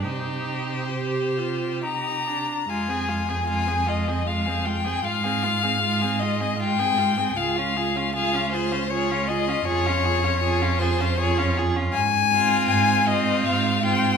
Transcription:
X:1
M:3/4
L:1/16
Q:1/4=78
K:Cm
V:1 name="Violin"
c8 b4 | [K:Fm] a4 a2 e2 f2 g2 | f6 e2 g4 | f4 f2 c2 d2 e2 |
d6 c2 d2 z2 | [K:Fdor] a4 a2 e2 f2 g2 |]
V:2 name="Violin"
G8- G3 z | [K:Fm] F A F A F A F A F A F A | F A F A F A F A F A F A | A F A F A F A F A F A F |
A F A F A F A F A F A F | [K:Fdor] z2 F4 F4 F2 |]
V:3 name="Viola"
E4 G2 F2 E2 D2 | [K:Fm] A, C A, C A, C A, C A, C A, C | A, C A, C A, C A, C A, C A, C | F D F D F D F D F D F D |
F D F D F D F D F D F D | [K:Fdor] z2 C4 C4 C2 |]
V:4 name="Cello" clef=bass
C,8- C,3 z | [K:Fm] F,,12 | A,,12 | D,,12 |
F,,12 | [K:Fdor] A,,4 A,,4 A,,4 |]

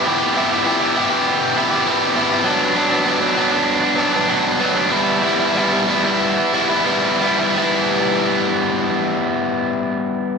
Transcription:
X:1
M:4/4
L:1/16
Q:1/4=95
K:Em
V:1 name="Overdriven electric guitar"
[B,EG]2 [B,EG] [EG] [B,EG] [EG] [B,EG] [EG]3 [B,EG] [EG] [B,EG]2 [B,EG] [EG] | [F,B,D]2 [F,B,D] [B,D] [F,B,D] [B,D] [F,B,D] [B,D]3 [F,B,D] [B,D] [F,B,D]2 [F,B,D] [B,D] | [G,B,E]2 [G,B,E] [B,E] [G,B,E] [B,E] [G,B,E] [B,E]3 [G,B,E] [B,E] [G,B,E]2 [G,B,E] [B,E] | [G,B,E]16 |]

